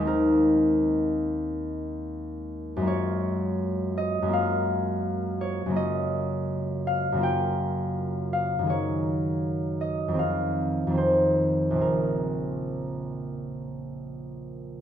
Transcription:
0, 0, Header, 1, 2, 480
1, 0, Start_track
1, 0, Key_signature, -5, "minor"
1, 0, Tempo, 689655
1, 51, Time_signature, 4, 2, 24, 8
1, 1491, Tempo, 729927
1, 6291, Tempo, 769231
1, 7251, Tempo, 842697
1, 9433, End_track
2, 0, Start_track
2, 0, Title_t, "Harp"
2, 0, Program_c, 0, 46
2, 0, Note_on_c, 0, 39, 52
2, 0, Note_on_c, 0, 56, 44
2, 0, Note_on_c, 0, 58, 39
2, 0, Note_on_c, 0, 73, 76
2, 0, Note_on_c, 0, 75, 80
2, 0, Note_on_c, 0, 77, 80
2, 13, Note_on_c, 0, 60, 41
2, 36, Note_on_c, 0, 63, 46
2, 50, Note_on_c, 0, 70, 67
2, 312, Note_off_c, 0, 77, 0
2, 741, Note_off_c, 0, 58, 0
2, 780, Note_off_c, 0, 73, 0
2, 1900, Note_on_c, 0, 42, 57
2, 1909, Note_off_c, 0, 56, 0
2, 1917, Note_on_c, 0, 56, 43
2, 1934, Note_on_c, 0, 58, 45
2, 1951, Note_on_c, 0, 65, 46
2, 1953, Note_off_c, 0, 39, 0
2, 1969, Note_off_c, 0, 60, 0
2, 1972, Note_on_c, 0, 73, 79
2, 1980, Note_off_c, 0, 63, 0
2, 1988, Note_off_c, 0, 75, 0
2, 2694, Note_off_c, 0, 70, 0
2, 2696, Note_on_c, 0, 75, 79
2, 2851, Note_off_c, 0, 42, 0
2, 2859, Note_on_c, 0, 42, 54
2, 2871, Note_off_c, 0, 56, 0
2, 2879, Note_on_c, 0, 56, 43
2, 2889, Note_off_c, 0, 58, 0
2, 2897, Note_on_c, 0, 58, 43
2, 2904, Note_off_c, 0, 65, 0
2, 2912, Note_on_c, 0, 65, 46
2, 2932, Note_on_c, 0, 77, 83
2, 3103, Note_off_c, 0, 75, 0
2, 3632, Note_off_c, 0, 73, 0
2, 3640, Note_on_c, 0, 73, 67
2, 3796, Note_off_c, 0, 42, 0
2, 3804, Note_on_c, 0, 42, 49
2, 3821, Note_on_c, 0, 49, 45
2, 3829, Note_off_c, 0, 58, 0
2, 3837, Note_on_c, 0, 58, 42
2, 3847, Note_off_c, 0, 65, 0
2, 3855, Note_on_c, 0, 65, 43
2, 3871, Note_off_c, 0, 56, 0
2, 3872, Note_on_c, 0, 75, 79
2, 4592, Note_off_c, 0, 77, 0
2, 4600, Note_on_c, 0, 77, 78
2, 4757, Note_off_c, 0, 42, 0
2, 4765, Note_on_c, 0, 42, 47
2, 4773, Note_off_c, 0, 49, 0
2, 4781, Note_on_c, 0, 49, 42
2, 4791, Note_off_c, 0, 58, 0
2, 4799, Note_on_c, 0, 58, 43
2, 4810, Note_off_c, 0, 65, 0
2, 4818, Note_on_c, 0, 65, 40
2, 4837, Note_on_c, 0, 79, 72
2, 5092, Note_off_c, 0, 75, 0
2, 5552, Note_off_c, 0, 77, 0
2, 5560, Note_on_c, 0, 77, 66
2, 5722, Note_off_c, 0, 42, 0
2, 5730, Note_on_c, 0, 42, 50
2, 5747, Note_on_c, 0, 51, 42
2, 5759, Note_off_c, 0, 58, 0
2, 5767, Note_on_c, 0, 58, 38
2, 5783, Note_on_c, 0, 68, 42
2, 5794, Note_off_c, 0, 73, 0
2, 5795, Note_off_c, 0, 49, 0
2, 5802, Note_on_c, 0, 73, 71
2, 5814, Note_off_c, 0, 65, 0
2, 5823, Note_off_c, 0, 77, 0
2, 5824, Note_off_c, 0, 79, 0
2, 6520, Note_on_c, 0, 75, 65
2, 6690, Note_on_c, 0, 41, 45
2, 6701, Note_off_c, 0, 51, 0
2, 6708, Note_on_c, 0, 51, 35
2, 6725, Note_on_c, 0, 60, 36
2, 6734, Note_off_c, 0, 68, 0
2, 6742, Note_on_c, 0, 68, 36
2, 6746, Note_off_c, 0, 42, 0
2, 6758, Note_on_c, 0, 77, 70
2, 6764, Note_off_c, 0, 58, 0
2, 6780, Note_off_c, 0, 73, 0
2, 7174, Note_off_c, 0, 41, 0
2, 7182, Note_on_c, 0, 41, 43
2, 7192, Note_off_c, 0, 51, 0
2, 7200, Note_on_c, 0, 51, 36
2, 7207, Note_off_c, 0, 60, 0
2, 7215, Note_on_c, 0, 60, 36
2, 7225, Note_off_c, 0, 68, 0
2, 7233, Note_on_c, 0, 68, 35
2, 7247, Note_on_c, 0, 72, 62
2, 7664, Note_on_c, 0, 34, 44
2, 7681, Note_on_c, 0, 49, 35
2, 7689, Note_off_c, 0, 60, 0
2, 7696, Note_on_c, 0, 60, 32
2, 7703, Note_off_c, 0, 68, 0
2, 7710, Note_on_c, 0, 68, 32
2, 7711, Note_off_c, 0, 41, 0
2, 7719, Note_off_c, 0, 51, 0
2, 7726, Note_on_c, 0, 70, 55
2, 7740, Note_off_c, 0, 75, 0
2, 9022, Note_off_c, 0, 77, 0
2, 9433, Note_off_c, 0, 34, 0
2, 9433, Note_off_c, 0, 49, 0
2, 9433, Note_off_c, 0, 60, 0
2, 9433, Note_off_c, 0, 68, 0
2, 9433, Note_off_c, 0, 70, 0
2, 9433, Note_off_c, 0, 72, 0
2, 9433, End_track
0, 0, End_of_file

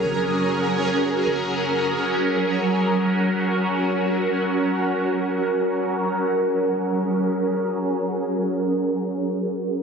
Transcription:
0, 0, Header, 1, 3, 480
1, 0, Start_track
1, 0, Key_signature, -6, "major"
1, 0, Tempo, 500000
1, 9435, End_track
2, 0, Start_track
2, 0, Title_t, "Ambient pad"
2, 0, Program_c, 0, 92
2, 0, Note_on_c, 0, 54, 79
2, 0, Note_on_c, 0, 61, 69
2, 0, Note_on_c, 0, 68, 72
2, 0, Note_on_c, 0, 70, 87
2, 1887, Note_off_c, 0, 68, 0
2, 1923, Note_on_c, 0, 66, 70
2, 5662, Note_off_c, 0, 66, 0
2, 5662, Note_off_c, 0, 70, 0
2, 5663, Note_off_c, 0, 54, 0
2, 5663, Note_off_c, 0, 61, 0
2, 5702, Note_on_c, 0, 68, 69
2, 5702, Note_on_c, 0, 70, 86
2, 5703, Note_on_c, 0, 54, 76
2, 5703, Note_on_c, 0, 61, 70
2, 9435, Note_off_c, 0, 54, 0
2, 9435, Note_off_c, 0, 61, 0
2, 9435, Note_off_c, 0, 68, 0
2, 9435, Note_off_c, 0, 70, 0
2, 9435, End_track
3, 0, Start_track
3, 0, Title_t, "808-style bass"
3, 0, Program_c, 1, 38
3, 33, Note_on_c, 1, 30, 111
3, 1176, Note_off_c, 1, 30, 0
3, 1214, Note_on_c, 1, 30, 104
3, 1894, Note_off_c, 1, 30, 0
3, 9435, End_track
0, 0, End_of_file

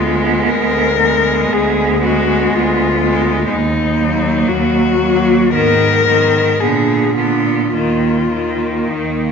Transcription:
0, 0, Header, 1, 5, 480
1, 0, Start_track
1, 0, Key_signature, -6, "minor"
1, 0, Tempo, 1156069
1, 205, Tempo, 1034483
1, 685, Tempo, 990099
1, 1645, Time_signature, 4, 2, 24, 8
1, 2125, Tempo, 1039861
1, 2605, Tempo, 1104972
1, 3565, Tempo, 1147228
1, 4221, End_track
2, 0, Start_track
2, 0, Title_t, "Cello"
2, 0, Program_c, 0, 42
2, 0, Note_on_c, 0, 65, 54
2, 202, Note_on_c, 0, 70, 60
2, 208, Note_off_c, 0, 65, 0
2, 684, Note_on_c, 0, 68, 51
2, 691, Note_off_c, 0, 70, 0
2, 927, Note_off_c, 0, 68, 0
2, 929, Note_on_c, 0, 66, 60
2, 1178, Note_on_c, 0, 65, 60
2, 1185, Note_off_c, 0, 66, 0
2, 1638, Note_off_c, 0, 65, 0
2, 1641, Note_on_c, 0, 63, 63
2, 2122, Note_on_c, 0, 66, 57
2, 2129, Note_off_c, 0, 63, 0
2, 2601, Note_off_c, 0, 66, 0
2, 2603, Note_on_c, 0, 70, 74
2, 3069, Note_on_c, 0, 68, 51
2, 3075, Note_off_c, 0, 70, 0
2, 3308, Note_off_c, 0, 68, 0
2, 3311, Note_on_c, 0, 65, 44
2, 3555, Note_off_c, 0, 65, 0
2, 3558, Note_on_c, 0, 65, 45
2, 4048, Note_on_c, 0, 63, 31
2, 4055, Note_off_c, 0, 65, 0
2, 4221, Note_off_c, 0, 63, 0
2, 4221, End_track
3, 0, Start_track
3, 0, Title_t, "Cello"
3, 0, Program_c, 1, 42
3, 0, Note_on_c, 1, 59, 39
3, 438, Note_off_c, 1, 59, 0
3, 449, Note_on_c, 1, 59, 36
3, 920, Note_off_c, 1, 59, 0
3, 926, Note_on_c, 1, 59, 38
3, 1398, Note_off_c, 1, 59, 0
3, 1407, Note_on_c, 1, 59, 39
3, 1639, Note_off_c, 1, 59, 0
3, 1872, Note_on_c, 1, 58, 44
3, 2345, Note_off_c, 1, 58, 0
3, 2360, Note_on_c, 1, 58, 38
3, 2600, Note_off_c, 1, 58, 0
3, 2609, Note_on_c, 1, 59, 35
3, 2835, Note_off_c, 1, 59, 0
3, 2838, Note_on_c, 1, 59, 30
3, 3069, Note_off_c, 1, 59, 0
3, 3072, Note_on_c, 1, 59, 34
3, 3309, Note_off_c, 1, 59, 0
3, 3312, Note_on_c, 1, 59, 29
3, 3557, Note_off_c, 1, 59, 0
3, 3568, Note_on_c, 1, 58, 26
3, 3804, Note_off_c, 1, 58, 0
3, 3806, Note_on_c, 1, 58, 27
3, 4221, Note_off_c, 1, 58, 0
3, 4221, End_track
4, 0, Start_track
4, 0, Title_t, "Cello"
4, 0, Program_c, 2, 42
4, 0, Note_on_c, 2, 56, 35
4, 440, Note_off_c, 2, 56, 0
4, 449, Note_on_c, 2, 56, 36
4, 920, Note_off_c, 2, 56, 0
4, 929, Note_on_c, 2, 56, 40
4, 1400, Note_off_c, 2, 56, 0
4, 1406, Note_on_c, 2, 56, 41
4, 1638, Note_off_c, 2, 56, 0
4, 1880, Note_on_c, 2, 54, 37
4, 2349, Note_off_c, 2, 54, 0
4, 2356, Note_on_c, 2, 54, 39
4, 2598, Note_off_c, 2, 54, 0
4, 2602, Note_on_c, 2, 51, 35
4, 2834, Note_off_c, 2, 51, 0
4, 2837, Note_on_c, 2, 51, 33
4, 3072, Note_off_c, 2, 51, 0
4, 3078, Note_on_c, 2, 50, 33
4, 3312, Note_off_c, 2, 50, 0
4, 3318, Note_on_c, 2, 50, 30
4, 3560, Note_off_c, 2, 50, 0
4, 3565, Note_on_c, 2, 51, 25
4, 3802, Note_off_c, 2, 51, 0
4, 3806, Note_on_c, 2, 51, 27
4, 4221, Note_off_c, 2, 51, 0
4, 4221, End_track
5, 0, Start_track
5, 0, Title_t, "Cello"
5, 0, Program_c, 3, 42
5, 0, Note_on_c, 3, 38, 43
5, 149, Note_off_c, 3, 38, 0
5, 200, Note_on_c, 3, 38, 40
5, 627, Note_off_c, 3, 38, 0
5, 681, Note_on_c, 3, 38, 43
5, 1115, Note_off_c, 3, 38, 0
5, 1172, Note_on_c, 3, 38, 47
5, 1589, Note_off_c, 3, 38, 0
5, 1643, Note_on_c, 3, 39, 52
5, 2066, Note_off_c, 3, 39, 0
5, 2121, Note_on_c, 3, 39, 42
5, 2545, Note_off_c, 3, 39, 0
5, 2602, Note_on_c, 3, 44, 39
5, 3022, Note_off_c, 3, 44, 0
5, 3076, Note_on_c, 3, 46, 39
5, 3504, Note_off_c, 3, 46, 0
5, 3561, Note_on_c, 3, 39, 32
5, 3988, Note_off_c, 3, 39, 0
5, 4042, Note_on_c, 3, 39, 28
5, 4221, Note_off_c, 3, 39, 0
5, 4221, End_track
0, 0, End_of_file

